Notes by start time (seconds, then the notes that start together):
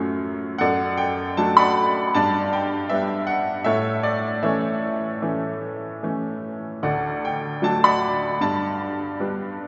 Already playing: F#2 F#3 A3 C#4 F4 G#4 C#5
0.58 F#2 A4 D5 F#5
0.97 G5
1.37 F#3 A3 D4 A5
1.57 D5 F#5 B5
2.15 G2 D5 A5
2.53 G5
2.89 G3 B3 D4 E5
3.27 F#5
3.64 A2 A4 C#5 E5
4.03 D5
4.43 E3 A3 C#4 A4 C#5 E5
5.22 E3 A3 C#4
6.03 E3 A3 C#4
6.83 D2 A4 D5 F#5
7.25 G5
7.62 F#3 A3 D4 A5
7.84 D5 F#5 B5
8.41 G2 D5 A5
9.20 G3 B3 D4